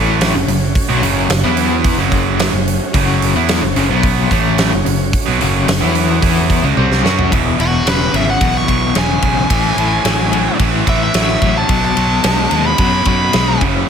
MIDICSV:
0, 0, Header, 1, 6, 480
1, 0, Start_track
1, 0, Tempo, 547445
1, 660, Time_signature, 4, 2, 24, 8
1, 12180, End_track
2, 0, Start_track
2, 0, Title_t, "Lead electric guitar"
2, 0, Program_c, 0, 29
2, 6670, Note_on_c, 0, 66, 83
2, 6896, Note_off_c, 0, 66, 0
2, 6911, Note_on_c, 0, 71, 73
2, 7137, Note_off_c, 0, 71, 0
2, 7153, Note_on_c, 0, 76, 73
2, 7261, Note_off_c, 0, 76, 0
2, 7277, Note_on_c, 0, 78, 75
2, 7500, Note_off_c, 0, 78, 0
2, 7517, Note_on_c, 0, 85, 70
2, 7856, Note_off_c, 0, 85, 0
2, 7874, Note_on_c, 0, 80, 78
2, 9270, Note_off_c, 0, 80, 0
2, 9548, Note_on_c, 0, 76, 90
2, 9658, Note_off_c, 0, 76, 0
2, 9674, Note_on_c, 0, 76, 77
2, 10131, Note_off_c, 0, 76, 0
2, 10149, Note_on_c, 0, 81, 77
2, 10375, Note_off_c, 0, 81, 0
2, 10390, Note_on_c, 0, 81, 80
2, 11082, Note_off_c, 0, 81, 0
2, 11108, Note_on_c, 0, 83, 76
2, 11451, Note_off_c, 0, 83, 0
2, 11464, Note_on_c, 0, 83, 93
2, 11926, Note_off_c, 0, 83, 0
2, 12180, End_track
3, 0, Start_track
3, 0, Title_t, "Tonewheel organ"
3, 0, Program_c, 1, 16
3, 0, Note_on_c, 1, 57, 60
3, 0, Note_on_c, 1, 61, 62
3, 0, Note_on_c, 1, 66, 66
3, 0, Note_on_c, 1, 73, 65
3, 1242, Note_off_c, 1, 66, 0
3, 1243, Note_off_c, 1, 61, 0
3, 1244, Note_off_c, 1, 73, 0
3, 1245, Note_off_c, 1, 57, 0
3, 1261, Note_on_c, 1, 71, 64
3, 1263, Note_on_c, 1, 64, 60
3, 1265, Note_on_c, 1, 59, 68
3, 1728, Note_on_c, 1, 66, 67
3, 1733, Note_on_c, 1, 57, 70
3, 1733, Note_on_c, 1, 61, 70
3, 1734, Note_on_c, 1, 73, 70
3, 1736, Note_off_c, 1, 71, 0
3, 1737, Note_off_c, 1, 64, 0
3, 1738, Note_off_c, 1, 59, 0
3, 5537, Note_off_c, 1, 66, 0
3, 5539, Note_off_c, 1, 57, 0
3, 5539, Note_off_c, 1, 61, 0
3, 5540, Note_off_c, 1, 73, 0
3, 5573, Note_on_c, 1, 69, 64
3, 5574, Note_on_c, 1, 66, 67
3, 5575, Note_on_c, 1, 61, 72
3, 5580, Note_on_c, 1, 73, 69
3, 6407, Note_off_c, 1, 61, 0
3, 6407, Note_off_c, 1, 66, 0
3, 6407, Note_off_c, 1, 69, 0
3, 6408, Note_on_c, 1, 59, 61
3, 6410, Note_off_c, 1, 73, 0
3, 6410, Note_on_c, 1, 76, 58
3, 6412, Note_on_c, 1, 68, 57
3, 6417, Note_on_c, 1, 64, 57
3, 8312, Note_off_c, 1, 59, 0
3, 8313, Note_off_c, 1, 76, 0
3, 8314, Note_off_c, 1, 68, 0
3, 8317, Note_off_c, 1, 64, 0
3, 8327, Note_on_c, 1, 61, 60
3, 8333, Note_on_c, 1, 69, 66
3, 8333, Note_on_c, 1, 76, 62
3, 8337, Note_on_c, 1, 64, 63
3, 10232, Note_off_c, 1, 61, 0
3, 10235, Note_off_c, 1, 69, 0
3, 10235, Note_off_c, 1, 76, 0
3, 10237, Note_off_c, 1, 64, 0
3, 10246, Note_on_c, 1, 71, 66
3, 10250, Note_on_c, 1, 63, 62
3, 10250, Note_on_c, 1, 78, 63
3, 10251, Note_on_c, 1, 66, 60
3, 11910, Note_off_c, 1, 66, 0
3, 11914, Note_off_c, 1, 71, 0
3, 11916, Note_off_c, 1, 63, 0
3, 11916, Note_off_c, 1, 78, 0
3, 11920, Note_on_c, 1, 66, 68
3, 11921, Note_on_c, 1, 76, 62
3, 11922, Note_on_c, 1, 69, 62
3, 11924, Note_on_c, 1, 61, 67
3, 12180, Note_off_c, 1, 61, 0
3, 12180, Note_off_c, 1, 66, 0
3, 12180, Note_off_c, 1, 69, 0
3, 12180, Note_off_c, 1, 76, 0
3, 12180, End_track
4, 0, Start_track
4, 0, Title_t, "Overdriven electric guitar"
4, 0, Program_c, 2, 29
4, 0, Note_on_c, 2, 45, 83
4, 0, Note_on_c, 2, 52, 86
4, 0, Note_on_c, 2, 57, 100
4, 295, Note_off_c, 2, 45, 0
4, 296, Note_off_c, 2, 52, 0
4, 298, Note_off_c, 2, 57, 0
4, 307, Note_on_c, 2, 42, 54
4, 310, Note_on_c, 2, 49, 61
4, 413, Note_off_c, 2, 42, 0
4, 415, Note_off_c, 2, 49, 0
4, 423, Note_on_c, 2, 42, 57
4, 426, Note_on_c, 2, 49, 59
4, 614, Note_off_c, 2, 42, 0
4, 615, Note_off_c, 2, 49, 0
4, 783, Note_on_c, 2, 47, 89
4, 786, Note_on_c, 2, 54, 102
4, 891, Note_off_c, 2, 54, 0
4, 893, Note_off_c, 2, 47, 0
4, 894, Note_on_c, 2, 42, 93
4, 897, Note_on_c, 2, 49, 95
4, 902, Note_on_c, 2, 54, 88
4, 1130, Note_off_c, 2, 42, 0
4, 1132, Note_off_c, 2, 49, 0
4, 1134, Note_off_c, 2, 54, 0
4, 1140, Note_on_c, 2, 42, 60
4, 1144, Note_on_c, 2, 49, 69
4, 1257, Note_off_c, 2, 49, 0
4, 1260, Note_off_c, 2, 42, 0
4, 1260, Note_on_c, 2, 52, 81
4, 1265, Note_on_c, 2, 59, 89
4, 1267, Note_on_c, 2, 64, 86
4, 1733, Note_off_c, 2, 52, 0
4, 1736, Note_off_c, 2, 59, 0
4, 1737, Note_off_c, 2, 64, 0
4, 1741, Note_on_c, 2, 42, 87
4, 1743, Note_on_c, 2, 49, 99
4, 1745, Note_on_c, 2, 54, 98
4, 2209, Note_off_c, 2, 49, 0
4, 2211, Note_off_c, 2, 42, 0
4, 2216, Note_off_c, 2, 54, 0
4, 2219, Note_on_c, 2, 49, 70
4, 2221, Note_on_c, 2, 42, 55
4, 2412, Note_off_c, 2, 49, 0
4, 2413, Note_off_c, 2, 42, 0
4, 2575, Note_on_c, 2, 42, 99
4, 2581, Note_on_c, 2, 49, 94
4, 2582, Note_on_c, 2, 54, 104
4, 2931, Note_off_c, 2, 42, 0
4, 2934, Note_off_c, 2, 49, 0
4, 2934, Note_off_c, 2, 54, 0
4, 2941, Note_on_c, 2, 52, 90
4, 2945, Note_on_c, 2, 59, 86
4, 2951, Note_on_c, 2, 64, 94
4, 3173, Note_off_c, 2, 52, 0
4, 3175, Note_off_c, 2, 59, 0
4, 3178, Note_off_c, 2, 64, 0
4, 3178, Note_on_c, 2, 42, 57
4, 3184, Note_on_c, 2, 49, 65
4, 3291, Note_off_c, 2, 42, 0
4, 3294, Note_off_c, 2, 49, 0
4, 3302, Note_on_c, 2, 42, 88
4, 3305, Note_on_c, 2, 49, 98
4, 3414, Note_off_c, 2, 42, 0
4, 3415, Note_off_c, 2, 49, 0
4, 3420, Note_on_c, 2, 47, 83
4, 3424, Note_on_c, 2, 54, 85
4, 3430, Note_on_c, 2, 59, 84
4, 3773, Note_off_c, 2, 47, 0
4, 3775, Note_off_c, 2, 54, 0
4, 3778, Note_off_c, 2, 59, 0
4, 3782, Note_on_c, 2, 45, 82
4, 3785, Note_on_c, 2, 52, 96
4, 3791, Note_on_c, 2, 57, 90
4, 4133, Note_off_c, 2, 45, 0
4, 4135, Note_off_c, 2, 52, 0
4, 4138, Note_off_c, 2, 57, 0
4, 4145, Note_on_c, 2, 42, 56
4, 4148, Note_on_c, 2, 49, 68
4, 4257, Note_off_c, 2, 42, 0
4, 4262, Note_off_c, 2, 49, 0
4, 4268, Note_on_c, 2, 42, 58
4, 4272, Note_on_c, 2, 49, 67
4, 4455, Note_off_c, 2, 42, 0
4, 4458, Note_off_c, 2, 49, 0
4, 4629, Note_on_c, 2, 47, 93
4, 4632, Note_on_c, 2, 54, 94
4, 4736, Note_off_c, 2, 47, 0
4, 4738, Note_off_c, 2, 54, 0
4, 4738, Note_on_c, 2, 42, 87
4, 4742, Note_on_c, 2, 49, 92
4, 4749, Note_on_c, 2, 54, 90
4, 4971, Note_off_c, 2, 42, 0
4, 4973, Note_off_c, 2, 49, 0
4, 4976, Note_off_c, 2, 54, 0
4, 4980, Note_on_c, 2, 42, 54
4, 4985, Note_on_c, 2, 49, 75
4, 5094, Note_off_c, 2, 49, 0
4, 5098, Note_on_c, 2, 52, 87
4, 5099, Note_off_c, 2, 42, 0
4, 5101, Note_on_c, 2, 59, 80
4, 5104, Note_on_c, 2, 64, 89
4, 5444, Note_off_c, 2, 52, 0
4, 5449, Note_off_c, 2, 59, 0
4, 5454, Note_off_c, 2, 64, 0
4, 5454, Note_on_c, 2, 52, 87
4, 5459, Note_on_c, 2, 59, 92
4, 5463, Note_on_c, 2, 64, 97
4, 5809, Note_off_c, 2, 52, 0
4, 5811, Note_off_c, 2, 59, 0
4, 5813, Note_off_c, 2, 64, 0
4, 5814, Note_on_c, 2, 49, 79
4, 5822, Note_on_c, 2, 56, 93
4, 5929, Note_off_c, 2, 49, 0
4, 5932, Note_off_c, 2, 56, 0
4, 5932, Note_on_c, 2, 48, 84
4, 5938, Note_on_c, 2, 60, 92
4, 5939, Note_on_c, 2, 55, 88
4, 6168, Note_off_c, 2, 48, 0
4, 6170, Note_off_c, 2, 60, 0
4, 6171, Note_off_c, 2, 55, 0
4, 6177, Note_on_c, 2, 54, 83
4, 6180, Note_on_c, 2, 61, 81
4, 6187, Note_on_c, 2, 66, 81
4, 6410, Note_off_c, 2, 54, 0
4, 6411, Note_off_c, 2, 61, 0
4, 6413, Note_on_c, 2, 40, 70
4, 6415, Note_off_c, 2, 66, 0
4, 6419, Note_on_c, 2, 47, 86
4, 6631, Note_off_c, 2, 40, 0
4, 6634, Note_off_c, 2, 47, 0
4, 6650, Note_on_c, 2, 40, 65
4, 6656, Note_on_c, 2, 47, 71
4, 6869, Note_off_c, 2, 40, 0
4, 6872, Note_off_c, 2, 47, 0
4, 6895, Note_on_c, 2, 40, 70
4, 6900, Note_on_c, 2, 49, 85
4, 7112, Note_off_c, 2, 40, 0
4, 7114, Note_off_c, 2, 49, 0
4, 7137, Note_on_c, 2, 40, 60
4, 7141, Note_on_c, 2, 49, 81
4, 7352, Note_off_c, 2, 40, 0
4, 7355, Note_off_c, 2, 49, 0
4, 7372, Note_on_c, 2, 40, 79
4, 7377, Note_on_c, 2, 47, 82
4, 7590, Note_off_c, 2, 40, 0
4, 7593, Note_off_c, 2, 47, 0
4, 7614, Note_on_c, 2, 40, 63
4, 7621, Note_on_c, 2, 47, 71
4, 7831, Note_off_c, 2, 40, 0
4, 7835, Note_off_c, 2, 47, 0
4, 7853, Note_on_c, 2, 40, 69
4, 7859, Note_on_c, 2, 49, 81
4, 8071, Note_off_c, 2, 40, 0
4, 8074, Note_off_c, 2, 49, 0
4, 8097, Note_on_c, 2, 40, 66
4, 8101, Note_on_c, 2, 49, 80
4, 8312, Note_off_c, 2, 40, 0
4, 8315, Note_off_c, 2, 49, 0
4, 8333, Note_on_c, 2, 45, 83
4, 8338, Note_on_c, 2, 52, 94
4, 8550, Note_off_c, 2, 45, 0
4, 8553, Note_off_c, 2, 52, 0
4, 8574, Note_on_c, 2, 45, 69
4, 8579, Note_on_c, 2, 52, 68
4, 8791, Note_off_c, 2, 45, 0
4, 8794, Note_off_c, 2, 52, 0
4, 8811, Note_on_c, 2, 45, 80
4, 8813, Note_on_c, 2, 54, 92
4, 9029, Note_off_c, 2, 45, 0
4, 9031, Note_off_c, 2, 54, 0
4, 9046, Note_on_c, 2, 45, 66
4, 9049, Note_on_c, 2, 54, 69
4, 9267, Note_off_c, 2, 45, 0
4, 9268, Note_off_c, 2, 54, 0
4, 9289, Note_on_c, 2, 45, 79
4, 9294, Note_on_c, 2, 52, 79
4, 9509, Note_off_c, 2, 45, 0
4, 9511, Note_off_c, 2, 52, 0
4, 9528, Note_on_c, 2, 45, 66
4, 9533, Note_on_c, 2, 52, 80
4, 9748, Note_off_c, 2, 45, 0
4, 9751, Note_off_c, 2, 52, 0
4, 9769, Note_on_c, 2, 45, 72
4, 9775, Note_on_c, 2, 54, 86
4, 9989, Note_off_c, 2, 45, 0
4, 9991, Note_off_c, 2, 54, 0
4, 10011, Note_on_c, 2, 45, 71
4, 10011, Note_on_c, 2, 54, 76
4, 10229, Note_off_c, 2, 45, 0
4, 10229, Note_off_c, 2, 54, 0
4, 10245, Note_on_c, 2, 47, 83
4, 10249, Note_on_c, 2, 54, 81
4, 10466, Note_off_c, 2, 47, 0
4, 10468, Note_off_c, 2, 54, 0
4, 10489, Note_on_c, 2, 47, 74
4, 10494, Note_on_c, 2, 54, 73
4, 10708, Note_off_c, 2, 47, 0
4, 10711, Note_off_c, 2, 54, 0
4, 10735, Note_on_c, 2, 47, 81
4, 10740, Note_on_c, 2, 56, 88
4, 10952, Note_off_c, 2, 47, 0
4, 10954, Note_off_c, 2, 56, 0
4, 10974, Note_on_c, 2, 47, 66
4, 10980, Note_on_c, 2, 56, 76
4, 11191, Note_off_c, 2, 47, 0
4, 11194, Note_off_c, 2, 56, 0
4, 11218, Note_on_c, 2, 47, 73
4, 11222, Note_on_c, 2, 54, 81
4, 11433, Note_off_c, 2, 47, 0
4, 11435, Note_off_c, 2, 54, 0
4, 11457, Note_on_c, 2, 47, 76
4, 11464, Note_on_c, 2, 54, 82
4, 11672, Note_off_c, 2, 47, 0
4, 11676, Note_off_c, 2, 54, 0
4, 11698, Note_on_c, 2, 47, 76
4, 11700, Note_on_c, 2, 56, 81
4, 11913, Note_off_c, 2, 47, 0
4, 11914, Note_off_c, 2, 56, 0
4, 11937, Note_on_c, 2, 42, 68
4, 11943, Note_on_c, 2, 49, 78
4, 12153, Note_off_c, 2, 42, 0
4, 12156, Note_off_c, 2, 49, 0
4, 12180, End_track
5, 0, Start_track
5, 0, Title_t, "Fingered electric bass"
5, 0, Program_c, 3, 33
5, 0, Note_on_c, 3, 33, 83
5, 277, Note_off_c, 3, 33, 0
5, 301, Note_on_c, 3, 30, 69
5, 413, Note_off_c, 3, 30, 0
5, 419, Note_on_c, 3, 30, 75
5, 643, Note_off_c, 3, 30, 0
5, 785, Note_on_c, 3, 35, 80
5, 895, Note_off_c, 3, 35, 0
5, 901, Note_on_c, 3, 30, 82
5, 1124, Note_off_c, 3, 30, 0
5, 1140, Note_on_c, 3, 30, 74
5, 1252, Note_off_c, 3, 30, 0
5, 1259, Note_on_c, 3, 40, 83
5, 1706, Note_off_c, 3, 40, 0
5, 1736, Note_on_c, 3, 30, 92
5, 2184, Note_off_c, 3, 30, 0
5, 2217, Note_on_c, 3, 30, 81
5, 2442, Note_off_c, 3, 30, 0
5, 2583, Note_on_c, 3, 30, 82
5, 2917, Note_off_c, 3, 30, 0
5, 2934, Note_on_c, 3, 40, 78
5, 3160, Note_off_c, 3, 40, 0
5, 3174, Note_on_c, 3, 30, 72
5, 3288, Note_off_c, 3, 30, 0
5, 3299, Note_on_c, 3, 30, 89
5, 3411, Note_off_c, 3, 30, 0
5, 3421, Note_on_c, 3, 35, 80
5, 3755, Note_off_c, 3, 35, 0
5, 3781, Note_on_c, 3, 33, 82
5, 4115, Note_off_c, 3, 33, 0
5, 4140, Note_on_c, 3, 30, 71
5, 4251, Note_off_c, 3, 30, 0
5, 4262, Note_on_c, 3, 30, 72
5, 4484, Note_off_c, 3, 30, 0
5, 4627, Note_on_c, 3, 35, 79
5, 4735, Note_off_c, 3, 35, 0
5, 4752, Note_on_c, 3, 30, 80
5, 4969, Note_off_c, 3, 30, 0
5, 4986, Note_on_c, 3, 30, 71
5, 5094, Note_off_c, 3, 30, 0
5, 5104, Note_on_c, 3, 40, 90
5, 5436, Note_off_c, 3, 40, 0
5, 5462, Note_on_c, 3, 40, 90
5, 5795, Note_off_c, 3, 40, 0
5, 5816, Note_on_c, 3, 37, 84
5, 5928, Note_off_c, 3, 37, 0
5, 5936, Note_on_c, 3, 36, 88
5, 6160, Note_off_c, 3, 36, 0
5, 6177, Note_on_c, 3, 42, 85
5, 6400, Note_off_c, 3, 42, 0
5, 6422, Note_on_c, 3, 28, 78
5, 6607, Note_off_c, 3, 28, 0
5, 6658, Note_on_c, 3, 28, 74
5, 6845, Note_off_c, 3, 28, 0
5, 6893, Note_on_c, 3, 28, 78
5, 7082, Note_off_c, 3, 28, 0
5, 7132, Note_on_c, 3, 32, 78
5, 7321, Note_off_c, 3, 32, 0
5, 7375, Note_on_c, 3, 35, 86
5, 7563, Note_off_c, 3, 35, 0
5, 7617, Note_on_c, 3, 35, 80
5, 7804, Note_off_c, 3, 35, 0
5, 7854, Note_on_c, 3, 28, 85
5, 8042, Note_off_c, 3, 28, 0
5, 8092, Note_on_c, 3, 35, 76
5, 8281, Note_off_c, 3, 35, 0
5, 8330, Note_on_c, 3, 33, 79
5, 8520, Note_off_c, 3, 33, 0
5, 8564, Note_on_c, 3, 33, 75
5, 8756, Note_off_c, 3, 33, 0
5, 8807, Note_on_c, 3, 33, 80
5, 9185, Note_off_c, 3, 33, 0
5, 9289, Note_on_c, 3, 33, 80
5, 9479, Note_off_c, 3, 33, 0
5, 9532, Note_on_c, 3, 33, 83
5, 9721, Note_off_c, 3, 33, 0
5, 9773, Note_on_c, 3, 33, 84
5, 9961, Note_off_c, 3, 33, 0
5, 10012, Note_on_c, 3, 33, 81
5, 10201, Note_off_c, 3, 33, 0
5, 10250, Note_on_c, 3, 35, 78
5, 10440, Note_off_c, 3, 35, 0
5, 10495, Note_on_c, 3, 35, 81
5, 10683, Note_off_c, 3, 35, 0
5, 10735, Note_on_c, 3, 35, 80
5, 10923, Note_off_c, 3, 35, 0
5, 10974, Note_on_c, 3, 39, 82
5, 11162, Note_off_c, 3, 39, 0
5, 11213, Note_on_c, 3, 42, 88
5, 11401, Note_off_c, 3, 42, 0
5, 11452, Note_on_c, 3, 42, 80
5, 11641, Note_off_c, 3, 42, 0
5, 11700, Note_on_c, 3, 35, 88
5, 11886, Note_off_c, 3, 35, 0
5, 11936, Note_on_c, 3, 30, 81
5, 12124, Note_off_c, 3, 30, 0
5, 12180, End_track
6, 0, Start_track
6, 0, Title_t, "Drums"
6, 183, Note_on_c, 9, 46, 71
6, 190, Note_on_c, 9, 38, 93
6, 271, Note_off_c, 9, 46, 0
6, 278, Note_off_c, 9, 38, 0
6, 423, Note_on_c, 9, 46, 51
6, 510, Note_off_c, 9, 46, 0
6, 661, Note_on_c, 9, 36, 110
6, 663, Note_on_c, 9, 46, 78
6, 749, Note_off_c, 9, 36, 0
6, 751, Note_off_c, 9, 46, 0
6, 902, Note_on_c, 9, 46, 54
6, 990, Note_off_c, 9, 46, 0
6, 1137, Note_on_c, 9, 46, 75
6, 1144, Note_on_c, 9, 38, 106
6, 1224, Note_off_c, 9, 46, 0
6, 1231, Note_off_c, 9, 38, 0
6, 1375, Note_on_c, 9, 46, 54
6, 1462, Note_off_c, 9, 46, 0
6, 1615, Note_on_c, 9, 46, 67
6, 1618, Note_on_c, 9, 36, 102
6, 1703, Note_off_c, 9, 46, 0
6, 1705, Note_off_c, 9, 36, 0
6, 1856, Note_on_c, 9, 46, 50
6, 1858, Note_on_c, 9, 36, 73
6, 1944, Note_off_c, 9, 46, 0
6, 1945, Note_off_c, 9, 36, 0
6, 2099, Note_on_c, 9, 46, 68
6, 2106, Note_on_c, 9, 38, 105
6, 2186, Note_off_c, 9, 46, 0
6, 2193, Note_off_c, 9, 38, 0
6, 2346, Note_on_c, 9, 46, 51
6, 2433, Note_off_c, 9, 46, 0
6, 2580, Note_on_c, 9, 36, 101
6, 2581, Note_on_c, 9, 46, 70
6, 2667, Note_off_c, 9, 36, 0
6, 2669, Note_off_c, 9, 46, 0
6, 2824, Note_on_c, 9, 46, 50
6, 2912, Note_off_c, 9, 46, 0
6, 3056, Note_on_c, 9, 46, 66
6, 3063, Note_on_c, 9, 38, 105
6, 3144, Note_off_c, 9, 46, 0
6, 3151, Note_off_c, 9, 38, 0
6, 3298, Note_on_c, 9, 46, 51
6, 3385, Note_off_c, 9, 46, 0
6, 3534, Note_on_c, 9, 46, 71
6, 3537, Note_on_c, 9, 36, 99
6, 3622, Note_off_c, 9, 46, 0
6, 3625, Note_off_c, 9, 36, 0
6, 3779, Note_on_c, 9, 36, 75
6, 3781, Note_on_c, 9, 46, 49
6, 3867, Note_off_c, 9, 36, 0
6, 3869, Note_off_c, 9, 46, 0
6, 4016, Note_on_c, 9, 46, 64
6, 4023, Note_on_c, 9, 38, 100
6, 4104, Note_off_c, 9, 46, 0
6, 4111, Note_off_c, 9, 38, 0
6, 4262, Note_on_c, 9, 46, 56
6, 4350, Note_off_c, 9, 46, 0
6, 4500, Note_on_c, 9, 36, 99
6, 4502, Note_on_c, 9, 46, 69
6, 4588, Note_off_c, 9, 36, 0
6, 4590, Note_off_c, 9, 46, 0
6, 4741, Note_on_c, 9, 46, 50
6, 4829, Note_off_c, 9, 46, 0
6, 4982, Note_on_c, 9, 46, 78
6, 4989, Note_on_c, 9, 38, 106
6, 5069, Note_off_c, 9, 46, 0
6, 5076, Note_off_c, 9, 38, 0
6, 5217, Note_on_c, 9, 46, 54
6, 5305, Note_off_c, 9, 46, 0
6, 5458, Note_on_c, 9, 36, 97
6, 5460, Note_on_c, 9, 46, 72
6, 5545, Note_off_c, 9, 36, 0
6, 5548, Note_off_c, 9, 46, 0
6, 5697, Note_on_c, 9, 36, 75
6, 5698, Note_on_c, 9, 46, 49
6, 5785, Note_off_c, 9, 36, 0
6, 5786, Note_off_c, 9, 46, 0
6, 5937, Note_on_c, 9, 48, 55
6, 6025, Note_off_c, 9, 48, 0
6, 6064, Note_on_c, 9, 38, 62
6, 6152, Note_off_c, 9, 38, 0
6, 6187, Note_on_c, 9, 38, 82
6, 6275, Note_off_c, 9, 38, 0
6, 6301, Note_on_c, 9, 43, 85
6, 6389, Note_off_c, 9, 43, 0
6, 6419, Note_on_c, 9, 36, 93
6, 6424, Note_on_c, 9, 51, 77
6, 6507, Note_off_c, 9, 36, 0
6, 6512, Note_off_c, 9, 51, 0
6, 6661, Note_on_c, 9, 51, 60
6, 6749, Note_off_c, 9, 51, 0
6, 6898, Note_on_c, 9, 51, 78
6, 6905, Note_on_c, 9, 38, 100
6, 6986, Note_off_c, 9, 51, 0
6, 6993, Note_off_c, 9, 38, 0
6, 7138, Note_on_c, 9, 51, 58
6, 7225, Note_off_c, 9, 51, 0
6, 7374, Note_on_c, 9, 36, 99
6, 7374, Note_on_c, 9, 51, 79
6, 7462, Note_off_c, 9, 36, 0
6, 7462, Note_off_c, 9, 51, 0
6, 7613, Note_on_c, 9, 36, 73
6, 7616, Note_on_c, 9, 51, 60
6, 7701, Note_off_c, 9, 36, 0
6, 7704, Note_off_c, 9, 51, 0
6, 7848, Note_on_c, 9, 51, 80
6, 7855, Note_on_c, 9, 38, 93
6, 7936, Note_off_c, 9, 51, 0
6, 7943, Note_off_c, 9, 38, 0
6, 8087, Note_on_c, 9, 51, 65
6, 8091, Note_on_c, 9, 36, 81
6, 8175, Note_off_c, 9, 51, 0
6, 8179, Note_off_c, 9, 36, 0
6, 8331, Note_on_c, 9, 36, 99
6, 8332, Note_on_c, 9, 51, 87
6, 8419, Note_off_c, 9, 36, 0
6, 8420, Note_off_c, 9, 51, 0
6, 8574, Note_on_c, 9, 51, 63
6, 8662, Note_off_c, 9, 51, 0
6, 8811, Note_on_c, 9, 51, 92
6, 8818, Note_on_c, 9, 38, 101
6, 8899, Note_off_c, 9, 51, 0
6, 8906, Note_off_c, 9, 38, 0
6, 9055, Note_on_c, 9, 51, 65
6, 9143, Note_off_c, 9, 51, 0
6, 9289, Note_on_c, 9, 51, 80
6, 9290, Note_on_c, 9, 36, 95
6, 9377, Note_off_c, 9, 51, 0
6, 9378, Note_off_c, 9, 36, 0
6, 9531, Note_on_c, 9, 36, 79
6, 9533, Note_on_c, 9, 51, 65
6, 9619, Note_off_c, 9, 36, 0
6, 9621, Note_off_c, 9, 51, 0
6, 9768, Note_on_c, 9, 51, 84
6, 9775, Note_on_c, 9, 38, 96
6, 9856, Note_off_c, 9, 51, 0
6, 9863, Note_off_c, 9, 38, 0
6, 10010, Note_on_c, 9, 51, 60
6, 10012, Note_on_c, 9, 36, 83
6, 10097, Note_off_c, 9, 51, 0
6, 10099, Note_off_c, 9, 36, 0
6, 10249, Note_on_c, 9, 51, 76
6, 10251, Note_on_c, 9, 36, 109
6, 10337, Note_off_c, 9, 51, 0
6, 10339, Note_off_c, 9, 36, 0
6, 10493, Note_on_c, 9, 51, 62
6, 10580, Note_off_c, 9, 51, 0
6, 10729, Note_on_c, 9, 51, 86
6, 10736, Note_on_c, 9, 38, 106
6, 10816, Note_off_c, 9, 51, 0
6, 10823, Note_off_c, 9, 38, 0
6, 10967, Note_on_c, 9, 51, 58
6, 11055, Note_off_c, 9, 51, 0
6, 11206, Note_on_c, 9, 51, 77
6, 11212, Note_on_c, 9, 36, 107
6, 11294, Note_off_c, 9, 51, 0
6, 11300, Note_off_c, 9, 36, 0
6, 11445, Note_on_c, 9, 51, 59
6, 11451, Note_on_c, 9, 36, 76
6, 11533, Note_off_c, 9, 51, 0
6, 11539, Note_off_c, 9, 36, 0
6, 11689, Note_on_c, 9, 51, 77
6, 11696, Note_on_c, 9, 38, 100
6, 11777, Note_off_c, 9, 51, 0
6, 11784, Note_off_c, 9, 38, 0
6, 11934, Note_on_c, 9, 51, 66
6, 11935, Note_on_c, 9, 36, 85
6, 12022, Note_off_c, 9, 51, 0
6, 12023, Note_off_c, 9, 36, 0
6, 12180, End_track
0, 0, End_of_file